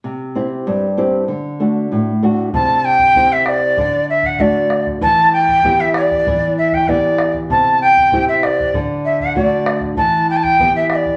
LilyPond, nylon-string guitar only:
\new Staff \with { instrumentName = "Nylon-string guitar" } { \time 2/4 \key c \lydian \tempo 4 = 96 c8 <c' e' g'>8 g,8 <c' e' g'>8 | d8 <a d' fis'>8 a,8 <a d' fis'>8 | c4 <c' e' g'>4 | d4 <a d' fis'>4 |
e4 <b e' g'>4 | e4 <b e' g'>4 | c4 <c' e' g'>4 | d4 <a d' fis'>4 |
e4 <b e' g'>4 | }